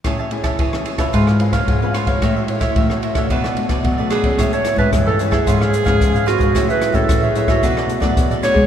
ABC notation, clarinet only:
X:1
M:4/4
L:1/16
Q:1/4=111
K:A
V:1 name="Clarinet"
z16 | z12 z2 G2- | G c2 B2 A2 G6- G F2- | F B2 A2 G2 F4- F z2 c2 |]